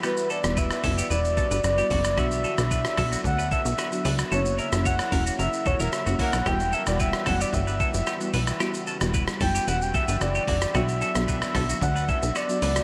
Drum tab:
HH |------o-------o-|------o-------o-|------o-------o-|------o-------o-|
SH |xxxxxxxxxxxxxxxx|xxxxxxxxxxxxxxxx|xxxxxxxxxxxxxxxx|xxxxxxxxxxxxxxxx|
SD |r--r-r------r--r|r--r-rr-----r--r|---r-r------r--r|r--r-rr-----r--r|
BD |----o-o---o---o-|o---o-o-o-o-----|----o-o---o---o-|o---o-o-o-o-----|

HH |------o-------o-|------o-------o-|
SH |xxxxxxxxxxxxxxxx|xxxxxxxxxxxxxxxx|
SD |r--r-r------r--r|r--r-rr-----r--r|
BD |----o-o---o---o-|o---o-o-o-o-----|